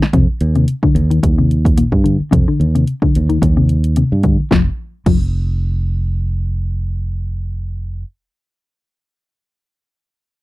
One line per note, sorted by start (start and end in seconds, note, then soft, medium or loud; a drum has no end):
0.02 muted fingered electric bass stroke soft
0.02 snare medium
0.13 0.26 F2 medium
0.13 0.23 C3 medium
0.13 kick medium
0.13 closed hi-hat medium
0.41 0.64 D#2 medium
0.41 closed hi-hat soft
0.55 0.73 C3 medium
0.55 closed hi-hat soft
0.68 closed hi-hat medium
0.83 1.01 D3 medium
0.83 kick medium
0.95 1.19 D#2 medium
0.95 closed hi-hat soft
1.10 1.28 D#3 medium
1.10 closed hi-hat medium
1.23 1.83 D#2 medium
1.23 kick medium
1.23 closed hi-hat medium
1.38 1.55 C3 medium
1.51 closed hi-hat soft
1.65 kick medium
1.65 closed hi-hat soft
1.78 1.95 A#2 medium
1.78 closed hi-hat medium
1.92 2.16 G2 medium
1.92 kick medium
2.04 2.22 D3 medium
2.04 closed hi-hat soft
2.20 muted fingered electric bass stroke soft
2.31 2.45 F2 medium
2.31 2.41 C3 medium
2.31 kick medium
2.31 closed hi-hat medium
2.48 2.65 D3 medium
2.60 2.83 D#2 medium
2.60 closed hi-hat soft
2.75 2.92 C3 medium
2.75 closed hi-hat soft
2.88 closed hi-hat medium
3.02 3.20 D3 medium
3.02 kick medium
3.15 3.39 D#2 medium
3.15 closed hi-hat soft
3.29 3.47 D#3 medium
3.29 closed hi-hat soft
3.42 4.02 D#2 medium
3.42 kick medium
3.42 closed hi-hat medium
3.57 3.74 C3 medium
3.69 closed hi-hat soft
3.84 closed hi-hat medium
3.96 4.14 C3 medium
3.96 closed hi-hat medium
4.12 4.36 G2 medium
4.23 4.42 D3 medium
4.23 kick medium
4.23 closed hi-hat soft
4.40 muted fingered electric bass stroke soft
4.51 4.68 F1 medium
4.51 4.62 F3 medium
4.51 kick medium
4.51 snare medium
5.06 8.03 F1 medium
5.06 5.17 F3 medium
5.06 kick medium
5.06 crash medium